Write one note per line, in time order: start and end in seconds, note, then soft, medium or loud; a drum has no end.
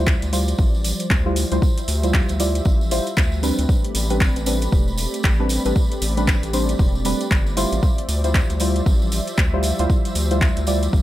0.00 0.15 D2 loud
0.00 3.65 F3 medium
0.00 0.24 G3 medium
0.00 3.65 G3 medium
0.00 0.24 E4 medium
0.00 0.24 F4 medium
0.00 0.24 C5 medium
0.00 3.65 C5 medium
0.00 1.60 D5 medium
0.06 kick loud
0.06 clap loud
0.06 tambourine soft
0.22 0.54 D2 medium
0.22 closed hi-hat medium
0.22 tambourine soft
0.32 1.22 G3 medium
0.32 1.22 E4 medium
0.32 1.22 F4 medium
0.32 1.22 C5 medium
0.32 open hi-hat medium
0.32 tambourine loud
0.48 closed hi-hat medium
0.48 tambourine soft
0.58 0.93 A1 medium
0.58 kick loud
0.58 tambourine soft
0.74 tambourine soft
0.84 open hi-hat loud
0.84 tambourine medium
0.99 closed hi-hat medium
0.99 tambourine soft
1.10 1.45 D2 loud
1.10 kick loud
1.10 clap loud
1.10 tambourine medium
1.26 1.48 G3 medium
1.26 1.48 E4 medium
1.26 1.48 F4 medium
1.26 1.48 C5 medium
1.36 open hi-hat loud
1.36 tambourine medium
1.52 1.59 D2 medium
1.52 1.68 G3 medium
1.52 1.68 E4 medium
1.52 1.68 F4 medium
1.52 1.68 C5 medium
1.52 closed hi-hat medium
1.52 tambourine soft
1.62 3.67 E5 medium
1.62 kick loud
1.62 tambourine medium
1.78 closed hi-hat medium
1.78 tambourine soft
1.88 2.22 D2 loud
1.88 open hi-hat loud
1.88 tambourine medium
2.03 2.37 G3 medium
2.03 2.37 E4 medium
2.03 2.37 F4 medium
2.03 2.37 C5 medium
2.03 closed hi-hat medium
2.03 tambourine soft
2.14 kick loud
2.14 clap loud
2.14 tambourine soft
2.28 2.61 D2 medium
2.28 closed hi-hat medium
2.28 tambourine soft
2.40 2.89 G3 medium
2.40 2.89 E4 medium
2.40 2.89 F4 medium
2.40 2.89 D5 medium
2.40 open hi-hat loud
2.40 tambourine loud
2.55 closed hi-hat medium
2.55 tambourine soft
2.65 3.00 A1 medium
2.65 kick loud
2.65 tambourine medium
2.81 tambourine soft
2.91 3.10 G3 medium
2.91 3.11 E4 medium
2.91 3.11 F4 medium
2.91 3.11 C5 loud
2.91 open hi-hat loud
2.91 tambourine medium
3.06 closed hi-hat medium
3.06 tambourine soft
3.17 3.52 D2 loud
3.17 kick loud
3.17 clap loud
3.17 tambourine medium
3.32 tambourine soft
3.43 4.06 G3 loud
3.43 4.07 C4 medium
3.43 4.07 D4 medium
3.43 4.07 B4 loud
3.43 open hi-hat medium
3.43 tambourine loud
3.59 3.66 D2 medium
3.59 closed hi-hat medium
3.59 tambourine soft
3.69 7.79 A3 medium
3.69 7.79 C4 medium
3.69 7.79 G4 medium
3.69 11.02 D5 medium
3.69 7.79 B5 medium
3.69 kick loud
3.69 tambourine medium
3.84 closed hi-hat medium
3.95 4.29 A1 loud
3.95 open hi-hat loud
3.95 tambourine loud
4.10 4.38 G3 medium
4.10 4.38 C4 medium
4.10 4.38 D4 medium
4.10 4.38 B4 medium
4.10 closed hi-hat medium
4.10 tambourine soft
4.20 kick loud
4.20 clap loud
4.20 tambourine medium
4.36 4.68 A1 medium
4.36 closed hi-hat medium
4.36 tambourine soft
4.46 5.36 G3 medium
4.46 5.36 C4 medium
4.46 5.36 D4 medium
4.46 5.36 B4 medium
4.46 open hi-hat loud
4.46 tambourine loud
4.61 closed hi-hat medium
4.61 tambourine soft
4.72 5.07 E1 medium
4.72 kick loud
4.72 tambourine medium
4.88 tambourine soft
4.97 open hi-hat loud
4.97 tambourine medium
5.14 closed hi-hat medium
5.14 tambourine soft
5.23 5.59 A1 loud
5.23 kick loud
5.23 clap loud
5.23 tambourine soft
5.40 5.62 G3 medium
5.40 5.62 C4 medium
5.40 5.62 D4 medium
5.40 5.62 B4 medium
5.49 open hi-hat loud
5.49 tambourine medium
5.65 5.73 A1 medium
5.65 5.81 G3 medium
5.65 5.81 C4 medium
5.65 5.81 D4 medium
5.65 5.81 B4 medium
5.65 closed hi-hat medium
5.65 tambourine soft
5.76 kick loud
5.76 tambourine medium
5.91 closed hi-hat medium
5.91 tambourine soft
6.02 6.36 A1 loud
6.02 open hi-hat loud
6.02 tambourine loud
6.17 6.51 G3 medium
6.17 6.51 C4 medium
6.17 6.51 D4 medium
6.17 6.51 B4 medium
6.17 closed hi-hat medium
6.17 tambourine soft
6.28 kick loud
6.28 clap loud
6.28 tambourine medium
6.43 6.75 A1 medium
6.43 closed hi-hat medium
6.43 tambourine soft
6.53 7.03 G3 medium
6.53 7.03 C4 medium
6.53 7.03 D4 medium
6.53 7.03 C5 medium
6.53 open hi-hat medium
6.53 tambourine loud
6.69 closed hi-hat medium
6.69 tambourine soft
6.79 7.14 E1 medium
6.79 kick loud
6.79 tambourine medium
6.95 tambourine soft
7.05 7.24 G3 medium
7.05 7.24 C4 medium
7.05 7.24 D4 medium
7.05 7.24 B4 medium
7.05 open hi-hat loud
7.05 tambourine medium
7.21 closed hi-hat medium
7.21 tambourine soft
7.31 7.65 G1 medium
7.31 kick loud
7.31 clap loud
7.31 tambourine medium
7.46 tambourine soft
7.57 8.20 G3 medium
7.57 8.20 E4 medium
7.57 8.20 F4 medium
7.57 8.21 C5 loud
7.57 open hi-hat medium
7.57 tambourine loud
7.72 7.80 A1 loud
7.72 closed hi-hat medium
7.72 tambourine soft
7.83 11.02 F3 medium
7.83 11.02 G3 medium
7.83 11.02 C5 medium
7.83 11.02 E5 medium
7.83 kick loud
7.83 tambourine medium
7.98 closed hi-hat medium
8.09 8.43 D2 loud
8.09 open hi-hat loud
8.09 tambourine medium
8.24 8.52 G3 medium
8.24 8.52 E4 medium
8.24 8.52 F4 medium
8.24 8.52 C5 medium
8.24 closed hi-hat medium
8.24 tambourine soft
8.34 kick loud
8.34 clap loud
8.34 tambourine medium
8.50 8.82 D2 medium
8.50 closed hi-hat medium
8.50 tambourine soft
8.60 9.50 G3 medium
8.60 9.50 E4 medium
8.60 9.50 F4 medium
8.60 9.50 C5 medium
8.60 open hi-hat loud
8.60 tambourine medium
8.76 closed hi-hat medium
8.76 tambourine soft
8.86 9.21 A1 medium
8.86 kick loud
8.86 tambourine medium
9.02 tambourine soft
9.12 open hi-hat loud
9.12 tambourine medium
9.27 closed hi-hat medium
9.27 tambourine soft
9.38 9.72 D2 loud
9.38 kick loud
9.38 clap loud
9.38 tambourine medium
9.53 9.76 G3 medium
9.53 9.76 E4 medium
9.53 9.76 F4 medium
9.53 9.76 C5 medium
9.63 open hi-hat medium
9.63 tambourine medium
9.78 9.87 D2 medium
9.78 9.95 G3 medium
9.78 9.95 E4 medium
9.78 9.95 F4 medium
9.78 9.95 C5 medium
9.78 closed hi-hat medium
9.78 tambourine soft
9.90 kick loud
9.90 tambourine medium
10.05 closed hi-hat medium
10.05 tambourine soft
10.15 10.50 D2 loud
10.15 open hi-hat loud
10.15 tambourine medium
10.31 10.65 G3 medium
10.31 10.65 E4 medium
10.31 10.65 F4 medium
10.31 10.65 C5 medium
10.31 closed hi-hat medium
10.31 tambourine soft
10.41 kick loud
10.41 clap loud
10.41 tambourine soft
10.56 10.88 D2 medium
10.56 closed hi-hat medium
10.56 tambourine soft
10.67 11.02 G3 medium
10.67 11.02 E4 medium
10.67 11.02 F4 medium
10.67 11.02 D5 medium
10.67 open hi-hat medium
10.67 tambourine loud
10.83 closed hi-hat medium
10.83 tambourine soft
10.93 11.02 A1 medium
10.93 kick loud
10.93 tambourine soft